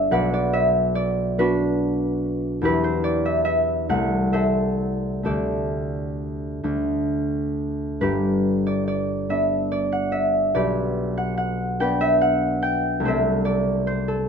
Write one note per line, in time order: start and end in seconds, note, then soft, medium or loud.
0.00 0.15 G1 medium
0.00 1.37 B3 soft
0.00 1.39 D4 soft
0.00 0.15 G4 medium
0.00 0.12 B4 medium
0.00 0.12 D5 medium
0.00 0.41 E5 medium
0.11 2.66 B1 medium
0.11 1.37 B4 medium
0.11 0.32 D5 medium
0.11 2.66 F#5 medium
0.34 0.68 D5 medium
0.53 1.25 E5 medium
0.95 2.66 D5 medium
1.38 2.62 B3 medium
1.38 2.67 D4 medium
1.38 2.67 F#4 medium
1.38 2.62 B4 medium
2.61 3.92 E2 medium
2.61 3.92 B3 soft
2.61 3.88 E4 medium
2.61 3.92 G4 medium
2.61 3.92 B4 medium
2.84 3.18 C5 medium
3.04 3.39 D5 medium
3.25 3.44 E5 medium
3.45 4.31 E5 medium
3.89 5.28 C2 medium
3.89 5.23 A3 soft
3.89 5.28 E4 soft
3.89 4.65 F#5 medium
4.33 5.24 A4 medium
4.33 5.28 C5 medium
4.33 5.28 E5 medium
5.23 6.63 D2 soft
5.23 6.62 A3 soft
5.23 6.62 D4 soft
5.23 6.67 G4 medium
5.23 8.05 A4 soft
5.23 8.65 D5 medium
6.63 8.05 D2 soft
6.63 8.04 A3 soft
6.63 8.01 D4 soft
8.01 10.58 G1 soft
8.01 9.29 D4 medium
8.01 10.55 G4 medium
8.01 10.54 B4 medium
8.67 8.86 D5 medium
8.88 9.70 D5 medium
9.29 11.79 B3 soft
9.29 11.79 D4 soft
9.29 10.01 E5 medium
9.72 10.54 D5 medium
9.92 10.28 F#5 medium
10.12 10.83 E5 medium
10.54 13.06 B1 soft
10.54 13.07 G4 soft
10.54 11.80 B4 medium
10.54 11.80 D5 medium
11.17 11.36 F#5 medium
11.38 12.20 F#5 medium
11.80 13.06 B3 medium
11.80 13.06 D4 soft
11.80 13.07 B4 medium
11.80 13.07 D5 medium
11.80 12.61 G5 medium
12.01 12.35 E5 medium
12.21 12.91 F#5 medium
12.62 13.06 G5 loud
13.00 14.29 C2 medium
13.00 14.29 A3 soft
13.05 14.29 C4 soft
13.05 14.07 A4 medium
13.05 13.86 C5 medium
13.05 14.29 E5 medium
13.45 14.17 D5 medium
13.87 14.29 C5 medium
14.08 14.29 A4 medium